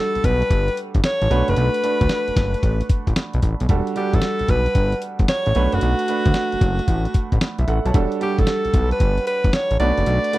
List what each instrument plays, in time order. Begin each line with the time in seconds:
Already playing: grand piano G3 D4 F#4 A4, alto saxophone A4
0.15 analog synth bass B1, closed hi-hat
0.24 analog synth bass B1, alto saxophone B4, kick, closed hi-hat
0.42 closed hi-hat
0.50 analog synth bass G1, kick, closed hi-hat
0.68 closed hi-hat
0.77 closed hi-hat
0.94 analog synth bass G1, kick, closed hi-hat
1.04 alto saxophone C#5, snare, closed hi-hat
1.21 analog synth bass A1, closed hi-hat
1.30 analog synth bass B1, grand piano A3 D4 F#4 B4, closed hi-hat
1.48 analog synth bass F#1, alto saxophone B4, closed hi-hat
1.56 analog synth bass B1, closed hi-hat
1.74 closed hi-hat
1.83 grand piano A3 D4 F#4 B4, closed hi-hat
2.01 analog synth bass D2, kick, closed hi-hat
2.09 snare, closed hi-hat
2.28 analog synth bass F#1, closed hi-hat
2.36 analog synth bass F#1, kick, snare, closed hi-hat
2.54 closed hi-hat
2.63 analog synth bass A1, kick, closed hi-hat
2.81 closed hi-hat
2.89 kick, closed hi-hat
3.07 analog synth bass A1, kick, closed hi-hat
3.16 snare, closed hi-hat
3.33 analog synth bass B1, closed hi-hat
3.42 analog synth bass A1, kick, closed hi-hat
3.60 analog synth bass B1, closed hi-hat
3.69 analog synth bass E1, grand piano G3 D4 F#4 A4, kick, closed hi-hat
3.87 closed hi-hat
3.96 grand piano G3 D4 F#4 A4, alto saxophone G4, closed hi-hat
4.13 analog synth bass A1, alto saxophone A4, kick, closed hi-hat
4.22 snare, closed hi-hat
4.39 analog synth bass B1, closed hi-hat
4.48 analog synth bass B1, alto saxophone B4, kick, closed hi-hat
4.66 closed hi-hat
4.75 analog synth bass G1, kick, closed hi-hat
4.92 closed hi-hat
5.02 closed hi-hat
5.19 analog synth bass G1, kick, closed hi-hat
5.28 alto saxophone C#5, snare, closed hi-hat
5.46 analog synth bass A1, closed hi-hat
5.55 analog synth bass B1, grand piano A3 D4 F#4 B4, closed hi-hat
5.72 analog synth bass F#1, alto saxophone F#4, closed hi-hat
5.81 analog synth bass B1, closed hi-hat
5.99 closed hi-hat
6.08 grand piano A3 D4 F#4 B4, closed hi-hat
6.25 analog synth bass D2, kick, closed hi-hat
6.34 snare, closed hi-hat
6.52 analog synth bass F#1, closed hi-hat
6.61 analog synth bass F#1, kick, closed hi-hat
6.79 closed hi-hat
6.88 analog synth bass A1, kick, closed hi-hat
7.05 closed hi-hat
7.14 kick, closed hi-hat
7.32 analog synth bass A1, kick, closed hi-hat
7.41 snare, closed hi-hat
7.58 analog synth bass B1, grand piano E5, closed hi-hat
7.67 analog synth bass A1, grand piano A4 F#5, closed hi-hat
7.85 analog synth bass B1, grand piano C#5 A5, closed hi-hat
7.94 analog synth bass E1, grand piano G3 D4 F#4 A4, kick, closed hi-hat
8.12 closed hi-hat
8.21 grand piano G3 D4 F#4 A4, alto saxophone G4, closed hi-hat
8.38 analog synth bass A1, alto saxophone A4, kick, closed hi-hat
8.47 snare, closed hi-hat
8.65 analog synth bass B1, closed hi-hat
8.74 analog synth bass B1, kick, closed hi-hat
8.91 alto saxophone B4, closed hi-hat
9.00 analog synth bass G1, kick, closed hi-hat
9.18 closed hi-hat
9.27 alto saxophone B4, closed hi-hat
9.44 analog synth bass G1, kick, closed hi-hat
9.53 alto saxophone C#5, snare, closed hi-hat
9.71 analog synth bass A1, closed hi-hat
9.80 analog synth bass B1, grand piano A3 D4 F#4 B4, alto saxophone D5, closed hi-hat
9.97 analog synth bass F#1, closed hi-hat
10.06 analog synth bass B1, closed hi-hat
10.24 closed hi-hat
10.33 grand piano A3 D4 F#4 B4, closed hi-hat